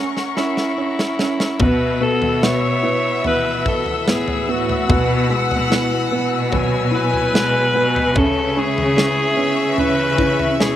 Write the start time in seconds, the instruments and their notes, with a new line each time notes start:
Already playing: grand piano C#4, string section C#4 A#4 E5 F#5 C#6
0.17 snare
0.37 grand piano C#4, alto saxophone E4, snare
0.57 snare
0.78 grand piano C#4
0.99 snare
1.19 grand piano C#4, snare
1.40 snare
1.59 nylon-string guitar B2, cello section B2, grand piano B3, string section B4 F#5 E6, alto saxophone B4, violin section E5, kick, floor tom
2.00 nylon-string guitar B3, grand piano B3, alto saxophone A4
2.22 cello section B2, floor tom
2.42 grand piano B3, nylon-string guitar F#4, alto saxophone C#5, snare
2.82 cello section B2, grand piano B3, nylon-string guitar E4
3.24 nylon-string guitar E3, grand piano B3, alto saxophone B4, floor tom
3.65 grand piano B3, nylon-string guitar F#4, alto saxophone A4, kick
3.86 floor tom
4.07 cello section A2, nylon-string guitar B3, grand piano B3, alto saxophone G#4, snare
4.28 floor tom
4.47 cello section A2, grand piano B3, nylon-string guitar E4, alto saxophone F#4
4.69 floor tom
4.88 nylon-string guitar B2, cello section B2, grand piano B3, violin section F#5, string section G#5, kick, floor tom
5.29 nylon-string guitar G#3, grand piano B3
5.51 cello section B2, floor tom
5.70 grand piano B3, nylon-string guitar E4, snare
6.11 cello section B2, nylon-string guitar B3, grand piano B3
6.51 nylon-string guitar F#3, grand piano B3, violin section G#5, kick, floor tom
6.91 grand piano B3, nylon-string guitar E4, alto saxophone B4
7.13 floor tom
7.32 cello section B2, nylon-string guitar G#3, grand piano B3, snare
7.74 cello section B2, nylon-string guitar B3, grand piano B3
7.96 floor tom
8.15 nylon-string guitar C#3, cello section C#3, grand piano C#4, alto saxophone A4, violin section E5, string section E5 C#6, kick, floor tom
8.56 nylon-string guitar G#3, grand piano C#4, alto saxophone G#4
8.77 cello section C#3, floor tom
8.96 grand piano C#4, nylon-string guitar E4, snare
9.36 cello section C#3, nylon-string guitar B3, grand piano C#4
9.78 nylon-string guitar E3, grand piano C#4, alto saxophone B4, floor tom
10.17 grand piano C#4, nylon-string guitar E4, kick
10.39 floor tom
10.59 cello section B2, nylon-string guitar G#3, grand piano C#4, alto saxophone G#4, snare